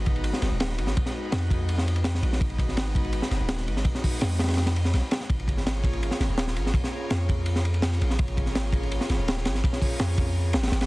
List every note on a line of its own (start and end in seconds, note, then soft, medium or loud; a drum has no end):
0.00 0.32 G#1 loud
0.00 0.76 G#3 medium
0.00 0.76 B3 medium
0.00 0.76 D#4 medium
0.00 0.76 F#4 medium
0.00 0.76 B4 loud
0.06 kick loud
0.06 ride medium
0.16 ride soft
0.24 ride medium
0.33 snare soft
0.42 0.50 F#1 loud
0.42 snare soft
0.42 ride medium
0.51 0.80 D#1 loud
0.60 snare loud
0.60 ride loud
0.69 snare soft
0.78 0.94 G#1 medium
0.78 0.86 G#3 medium
0.78 0.86 B3 medium
0.78 0.86 D#4 medium
0.78 0.86 F#4 medium
0.78 0.86 B4 medium
0.78 ride medium
0.87 snare soft
0.97 1.85 G#3 medium
0.97 1.85 B3 medium
0.97 1.85 D#4 medium
0.97 1.85 F#4 medium
0.97 1.85 B4 loud
0.97 kick loud
0.97 ride medium
1.06 snare medium
1.32 2.21 F2 medium
1.32 snare loud
1.32 ride medium
1.50 kick medium
1.50 ride medium
1.69 ride medium
1.78 snare soft
1.88 ride medium
1.96 ride soft
2.04 2.39 G#3 medium
2.04 2.39 B3 medium
2.04 2.39 D#4 medium
2.04 2.39 F#4 medium
2.04 2.39 B4 loud
2.04 snare loud
2.04 ride loud
2.15 snare soft
2.23 2.39 A#1 medium
2.23 ride medium
2.33 snare soft
2.41 3.21 G#1 loud
2.41 3.65 G#3 medium
2.41 3.65 B3 medium
2.41 3.65 D#4 medium
2.41 3.65 F#4 medium
2.41 3.65 B4 loud
2.41 kick loud
2.41 ride medium
2.50 ride soft
2.58 kick loud
2.58 ride medium
2.68 snare soft
2.77 snare loud
2.77 ride medium
2.95 kick loud
2.95 ride medium
3.04 ride soft
3.13 ride medium
3.22 snare medium
3.31 3.39 F#1 loud
3.31 snare soft
3.31 ride medium
3.41 3.69 D#1 loud
3.49 snare loud
3.49 ride loud
3.58 snare medium
3.67 3.84 G#1 medium
3.67 3.75 G#3 medium
3.67 3.75 B3 medium
3.67 3.76 D#4 medium
3.67 3.75 F#4 medium
3.67 3.75 B4 medium
3.67 ride medium
3.77 snare soft
3.85 4.74 G#3 loud
3.85 4.74 B3 medium
3.85 4.74 D#4 medium
3.85 4.74 F#4 medium
3.85 4.74 B4 loud
3.85 kick loud
3.85 ride medium
3.95 snare soft
4.04 kick loud
4.04 open hi-hat medium
4.21 4.93 F2 medium
4.21 snare loud
4.21 ride medium
4.39 snare loud
4.39 ride medium
4.43 snare loud
4.43 ride medium
4.48 snare medium
4.48 ride medium
4.53 snare medium
4.53 ride medium
4.57 snare loud
4.57 ride medium
4.66 snare loud
4.66 ride medium
4.76 ride medium
4.85 snare soft
4.93 5.02 B1 loud
4.93 snare soft
4.93 ride medium
5.11 5.28 G#3 medium
5.11 5.28 B3 medium
5.11 5.28 D#4 medium
5.11 5.28 F#4 medium
5.11 5.28 B4 medium
5.11 snare loud
5.11 ride medium
5.20 snare soft
5.30 6.10 G#1 loud
5.30 6.54 A#3 medium
5.30 6.54 C#4 medium
5.30 6.54 F4 medium
5.30 6.54 G#4 medium
5.30 6.54 C#5 loud
5.30 kick loud
5.30 ride medium
5.40 ride soft
5.48 kick medium
5.48 ride medium
5.57 snare soft
5.67 snare loud
5.67 ride medium
5.84 kick loud
5.84 ride medium
5.93 ride soft
6.03 ride medium
6.11 snare soft
6.20 6.28 G#1 loud
6.20 snare soft
6.20 ride medium
6.29 6.58 D#1 loud
6.38 snare loud
6.38 ride medium
6.47 snare medium
6.56 6.73 G#1 medium
6.56 6.65 A#3 medium
6.56 6.65 C#4 medium
6.56 6.65 F4 medium
6.56 6.64 G#4 medium
6.56 6.64 C#5 medium
6.56 ride medium
6.67 snare soft
6.74 7.63 A#3 loud
6.74 7.63 C#4 medium
6.74 7.63 F4 medium
6.74 7.63 G#4 medium
6.74 7.63 C#5 loud
6.74 kick loud
6.74 ride medium
6.84 snare medium
7.10 8.00 F2 medium
7.10 snare loud
7.10 ride medium
7.29 kick loud
7.29 ride medium
7.46 ride medium
7.56 snare medium
7.65 ride medium
7.74 ride soft
7.82 8.17 A#3 medium
7.82 8.17 C#4 medium
7.82 8.17 F4 medium
7.82 8.17 G#4 medium
7.82 8.17 C#5 loud
7.82 snare loud
7.82 ride medium
7.92 snare soft
8.01 8.17 A#1 medium
8.01 ride medium
8.10 snare soft
8.19 8.99 G#1 loud
8.19 9.44 A#3 medium
8.19 9.44 C#4 medium
8.19 9.44 F4 medium
8.19 9.44 G#4 medium
8.19 9.44 C#5 loud
8.19 kick loud
8.19 ride medium
8.28 ride soft
8.37 kick loud
8.37 ride medium
8.46 snare soft
8.55 snare loud
8.55 ride medium
8.73 kick loud
8.73 ride medium
8.83 ride soft
8.92 ride medium
9.01 snare medium
9.10 9.18 G#1 loud
9.10 snare soft
9.10 ride medium
9.19 9.47 D#1 loud
9.28 snare loud
9.28 ride loud
9.37 snare soft
9.45 9.62 G#1 medium
9.45 9.54 A#3 medium
9.45 9.54 C#4 medium
9.45 9.54 F4 medium
9.45 9.54 G#4 medium
9.45 9.54 C#5 medium
9.45 snare loud
9.45 ride medium
9.55 snare soft
9.64 10.52 A#3 loud
9.64 10.52 C#4 medium
9.64 10.52 F4 medium
9.64 10.52 G#4 medium
9.64 10.52 C#5 loud
9.64 kick loud
9.64 ride medium
9.73 snare medium
9.82 kick loud
9.82 open hi-hat medium
9.99 10.55 F2 medium
9.99 snare loud
9.99 ride medium
10.18 kick medium
10.18 ride medium
10.53 10.70 G#1 medium
10.53 snare loud
10.53 ride medium
10.63 snare medium
10.63 ride medium
10.68 snare loud
10.68 ride medium
10.72 10.86 G#1 medium
10.72 snare loud
10.72 ride medium
10.81 snare loud
10.81 ride medium